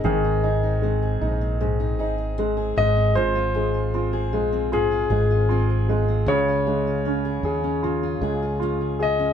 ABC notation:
X:1
M:4/4
L:1/16
Q:1/4=77
K:Fm
V:1 name="Grand piano"
A12 z2 e2 | c8 A8 | d12 z2 e2 |]
V:2 name="Steel-string acoustic guitar"
[A,,CEA] E A E C A E C A,, E A E C A A,, C | A,, F A F C A F C A,, F A F C A F C | D, F A F D A F D D, F A F D A F D |]
V:3 name="Grand piano"
[E,A,E]2 E2 A,2 E2 A,2 E2 A,2 A,2 | F2 A,2 F2 A,2 F2 A,2 F2 A,2 | D,2 A,2 D2 A2 F2 A,2 F2 A2 |]
V:4 name="Fretless electric bass" clef=bass
A,,,6 B,,,4 A,,,4 A,,,2- | A,,,6 B,,,4 A,,,6 | D,,6 E,,4 D,,6 |]